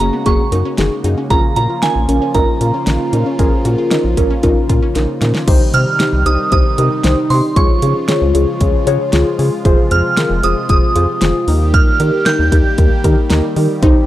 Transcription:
Already playing: C#3 G#3 A#3 F#4
0.00 F#1 A#3 C#4 F#4 G#4 A#5, closed hi-hat
0.13 B3
0.26 F#1 A#3 C#4 F#4 G#4 C#6, kick, closed hi-hat
0.52 F#2 A#3 D#4 F#4 A#4, closed hi-hat
0.65 C#4
0.78 F#1 A#3 D#4 F#4 G#4, snare, closed hi-hat
1.04 F#2 A#3 D#4 F#4 G#4, closed hi-hat
1.17 C#4
1.30 A#1 C#3 F3 C#4 F4 G#4 A#4 A#5, kick, closed hi-hat
1.56 A#2 C#4 F4 F#4 A#4 A#5, closed hi-hat
1.70 F4
1.82 C#4 D#4 F4 A#4 G#5, snare, closed hi-hat
1.96 A#1
2.08 A#1 C#4 F4 A#4, closed hi-hat
2.22 C#4
2.34 A#1 C#4 D#4 F4 A#4 A#5, kick, closed hi-hat
2.61 A#2 C#4 F4 A#4, closed hi-hat
2.74 C#4
2.87 A#1 C#4 D#4 F4 A#4, snare, closed hi-hat
3.13 A#2 C#4 D#4 F4 A#4, closed hi-hat
3.26 C#4
3.39 A#1 C#4 F4 G#4 A#4, kick, closed hi-hat
3.65 A#2 C#4 F4 F#4 A#4, closed hi-hat
3.78 F4
3.91 C#4 D#4 F4 A#4, snare, closed hi-hat
4.04 A#1
4.17 A#1 C#4 F4 A#4, kick, closed hi-hat
4.30 C#4
4.43 A#1 C#4 D#4 F4 A#4, kick, closed hi-hat
4.69 A#2 C#4 F4 A#4, kick, closed hi-hat
4.82 C#4
4.95 A#1 C#4 D#4 F4 A#4, snare, closed hi-hat
5.21 A#2 C#4 D#4 F4 A#4, snare, closed hi-hat
5.34 C#4, snare
5.48 C2 C3 D#3 G3 D#4 G4 C5, kick, closed hi-hat, crash
5.74 C3 D#4 G4 C5 F6, closed hi-hat
6.00 D#4 G4 C5, snare, closed hi-hat
6.13 C2
6.26 C2 D#4 G4 C5 D#6, closed hi-hat
6.52 C2 D#4 G4 C5 D#6, kick, closed hi-hat
6.78 C3 D#4 G4 A#4, closed hi-hat
7.04 C2 D#4 G4 C5, snare, closed hi-hat
7.30 C3 D#4 G4 C5 C6, open hi-hat
7.56 C#2 C#3 F3 G#3 F4 G#4 C#5 C#6, kick, closed hi-hat
7.82 C#3 F4 G#4 C#5, closed hi-hat
8.08 F4 G#4 C#5, snare, closed hi-hat
8.22 C#2
8.35 C#2 F4 G#4 C#5, closed hi-hat
8.61 C#2 F4 G#4 C#5, kick, closed hi-hat
8.87 C#3 F4 G#4 C#5, closed hi-hat
9.13 C#2 F4 G#4 C#5, snare, closed hi-hat
9.39 C#3 F4 G#4 C#5, open hi-hat
9.65 F1 C3 F3 F4 G#4 C5, kick, closed hi-hat
9.91 F2 F4 G#4 C5 F6, closed hi-hat
10.17 F4 G#4 A#4, snare, closed hi-hat
10.30 F1
10.43 F1 F4 G#4 C5 D#6, closed hi-hat
10.69 F1 F4 G#4 C5 D#6, kick, closed hi-hat
10.96 F2 F4 G#4 C5, closed hi-hat
11.21 F1 F4 G#4 C5, snare, closed hi-hat
11.48 D#2 D#3 G3 A#3 D#4 G4 A#4, open hi-hat
11.74 F6, kick, closed hi-hat
12.00 D#3 D#4 G4 A#4, closed hi-hat
12.26 D#4 G4 A#4 G6, snare, closed hi-hat
12.39 D#2
12.52 D#2 D#4 G4 A#4, kick, closed hi-hat
12.78 D#2 D#4 G4 A#4, kick, closed hi-hat
13.04 D#3 D#4 G4 A#4, kick, closed hi-hat
13.30 D#2 D#4 G4 A#4, snare, closed hi-hat
13.56 D#3 D#4 G4 A#4, open hi-hat
13.82 C2 C4 D#4 G4 C5, kick, closed hi-hat

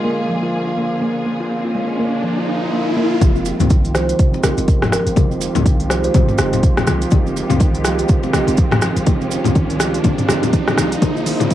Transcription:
Already playing: D3 A#3 F4 G#4, riser
0.04 A#3
0.29 F3
0.43 F4
0.67 F4
0.77 A#3
1.01 A#3
1.26 A#3
1.40 F4
1.65 F4
1.75 G#3
1.99 A#3
2.24 F3
2.38 F4
2.62 F4
2.73 A#3
2.97 A#3
3.21 F1 D#3 F3 G#3 D#4 F4 G4, kick, closed hi-hat, mid tom, riser, muted conga, high conga, maracas
3.35 C4, maracas
3.45 muted conga, maracas
3.60 C2 C4, closed hi-hat, mid tom, high conga, low conga, maracas
3.70 D#3, kick, closed hi-hat, mid tom, muted conga, maracas
3.85 closed hi-hat, maracas
3.94 F3 G#3 D#4 F4 G4 C5, cross-stick, muted conga, maracas
4.09 closed hi-hat, maracas
4.19 C3, kick, closed hi-hat, mid tom, maracas
4.33 C4, muted conga, maracas
4.43 A#1 G#3 D#4 F4 G4 A#4, cross-stick, high conga, maracas
4.57 F1 C4, closed hi-hat, muted conga, maracas
4.68 F3, kick, closed hi-hat, mid tom, maracas
4.82 cross-stick, mid tom, muted conga, low conga, maracas
4.92 F3 A#4, cross-stick, maracas
5.07 F1, closed hi-hat, maracas
5.16 F1 F3 G#3 D#4 F4 G4, kick, closed hi-hat, mid tom, muted conga, high conga, maracas
5.31 C4, maracas
5.41 muted conga, maracas
5.55 C2 C4, closed hi-hat, mid tom, high conga, low conga, maracas
5.65 D#3, kick, closed hi-hat, mid tom, muted conga, maracas
5.80 closed hi-hat, maracas
5.90 F3 G#3 D#4 F4 G4 C5, cross-stick, muted conga, maracas
6.04 C5, closed hi-hat, maracas
6.14 C3, kick, closed hi-hat, mid tom, high conga, low conga, maracas
6.28 C4, mid tom, muted conga, maracas
6.38 F1 G#3 D#4 F4 G4, cross-stick, high conga, maracas
6.53 C4, closed hi-hat, muted conga, low conga, maracas
6.63 F3, kick, closed hi-hat, mid tom, maracas
6.77 cross-stick, muted conga, high conga, low conga, maracas
6.87 C2 F3, cross-stick, high conga, maracas
7.02 closed hi-hat, maracas
7.11 F1 F3 G#3 D#4 F4 G4, kick, closed hi-hat, mid tom, muted conga, high conga, maracas
7.26 C4, maracas
7.36 muted conga, maracas
7.50 C2 C4, closed hi-hat, mid tom, high conga, low conga, maracas
7.60 D#3, kick, closed hi-hat, mid tom, muted conga, maracas
7.75 closed hi-hat, maracas
7.85 F3 G#3 D#4 F4 G4, cross-stick, muted conga, maracas
7.99 closed hi-hat, maracas
8.09 C3, kick, closed hi-hat, mid tom, maracas
8.23 C4, muted conga, maracas
8.33 A#1 G#3 D#4 F4 G4, cross-stick, high conga, maracas
8.47 F1 C4, closed hi-hat, muted conga, maracas
8.57 F3, kick, closed hi-hat, mid tom, maracas
8.71 cross-stick, mid tom, muted conga, low conga, maracas
8.82 F3, cross-stick, maracas
8.96 F1, closed hi-hat, maracas
9.07 F1 F3 G#3 D#4 F4 G4, kick, closed hi-hat, mid tom, muted conga, high conga, maracas
9.21 C4, maracas
9.31 muted conga, maracas
9.44 C2 C4, closed hi-hat, mid tom, high conga, low conga, maracas
9.55 D#3, kick, closed hi-hat, mid tom, muted conga, maracas
9.70 closed hi-hat, maracas
9.80 F3 G#3 D#4 F4 G4, cross-stick, muted conga, maracas
9.94 closed hi-hat, maracas
10.04 C3, kick, closed hi-hat, mid tom, high conga, low conga, maracas
10.18 C4, closed hi-hat, mid tom, muted conga, maracas
10.28 F1 G#3 D#4 F4 G4, cross-stick, high conga, maracas
10.43 C4, closed hi-hat, muted conga, low conga, maracas
10.53 F3, kick, closed hi-hat, mid tom, maracas
10.68 cross-stick, muted conga, high conga, low conga, maracas
10.77 C2 F3, cross-stick, high conga, maracas
10.92 closed hi-hat, maracas
11.02 A#1 D3 A#3 D4 F4 G#4, kick, closed hi-hat, mid tom, muted conga, high conga, maracas
11.16 F4, maracas
11.26 open hi-hat, mid tom, muted conga, maracas
11.40 F1 F4, closed hi-hat, mid tom, high conga, low conga, maracas
11.50 G#3, kick, closed hi-hat, mid tom, muted conga, maracas

